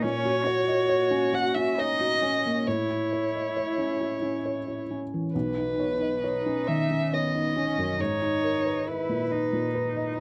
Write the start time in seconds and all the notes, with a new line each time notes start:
0.03 A#2 C#4 C#5
0.25 F#4
0.45 F#4 C#5
0.68 D#5
0.89 C#5
1.11 C#4
1.33 F#4 F#5
1.55 C#4 E5
1.77 D#4 C#5 D#5
2.00 F#4
2.21 C#4
2.46 A#3
2.66 A2 E4 C#5
2.90 E4
3.13 C#5
3.35 D#5
3.57 C#5
3.78 C#4
4.00 E4
4.22 C#4
4.45 C#5
4.67 E4
4.91 C#4
5.14 E3
5.35 B1 B4
5.57 D#4
5.80 C#5
6.01 D#5
6.23 D#4 C#5
6.46 C#4
6.67 D#3 E5
6.91 C#4
7.13 B3 C#5 D#5
7.35 D#4
7.56 C#4
7.78 F#2
8.00 G#2 D#4 C#5
8.22 D#4
8.44 A#4
8.65 B4
8.87 E4 B4
9.09 A#2
9.31 D#4
9.53 A#2
9.75 B4
9.97 D#5